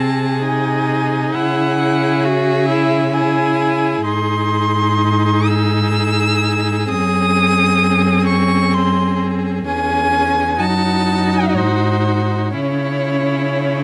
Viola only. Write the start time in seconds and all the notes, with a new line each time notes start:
Already playing: C4
0.44 D#4
1.34 E4
1.79 E4
2.24 F#4
2.68 E4
3.14 E4
4.05 D#4
6.89 C4
9.67 C#4
10.60 D#4
12.53 C#4